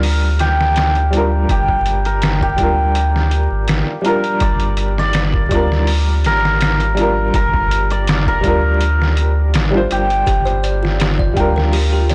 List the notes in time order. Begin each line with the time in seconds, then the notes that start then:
Already playing: D2 G3 D4 F4 A#4
0.03 open hi-hat
0.39 G4, snare, closed hi-hat
0.61 snare
0.76 snare, closed hi-hat
0.95 closed hi-hat
1.10 G3 D4, closed hi-hat
1.15 F4 A#4
1.49 G1 G4, kick, closed hi-hat
1.68 kick
1.86 closed hi-hat
2.05 A#4, closed hi-hat
2.22 snare, closed hi-hat
2.41 G4, kick
2.56 D2 G3 D4 F4, kick, closed hi-hat
2.63 A#4
2.95 closed hi-hat
3.16 snare
3.31 closed hi-hat
3.51 G#1
3.68 snare, closed hi-hat
4.02 G3 D4 A#4, closed hi-hat
4.06 F4 A#4
4.24 closed hi-hat
4.40 G1 D5, kick, closed hi-hat
4.60 closed hi-hat
4.77 closed hi-hat
4.98 D5, snare
5.13 snare, closed hi-hat
5.34 kick
5.49 D2 G3 D4 D5, kick, closed hi-hat
5.53 F4 A#4
5.72 snare
5.87 open hi-hat
6.24 G#1 A#4, snare, closed hi-hat
6.45 snare
6.61 snare, closed hi-hat
6.80 closed hi-hat
6.95 G3 D4, closed hi-hat
6.99 F4 A#4
7.34 G1 A#4, kick, closed hi-hat
7.54 kick
7.71 closed hi-hat
7.91 D5, closed hi-hat
8.07 snare, closed hi-hat
8.27 A#4, kick
8.41 D2 G3 D4, kick, closed hi-hat
8.45 F4 A#4
8.81 closed hi-hat
9.02 snare
9.17 closed hi-hat
9.54 G#1, snare, closed hi-hat
9.71 G3 D4
9.75 F4 C5
9.91 G1 G4, closed hi-hat
10.10 closed hi-hat
10.26 G1 F4 G4, kick, closed hi-hat
10.45 C5, closed hi-hat
10.63 D5, closed hi-hat
10.83 F4, snare
11.00 G4, snare, closed hi-hat
11.19 D5, kick
11.34 D2 G3 D4 G5, kick, closed hi-hat
11.38 F4 A#4
11.56 A#4, snare
11.73 G4, open hi-hat
11.92 G4
12.09 D5, snare, closed hi-hat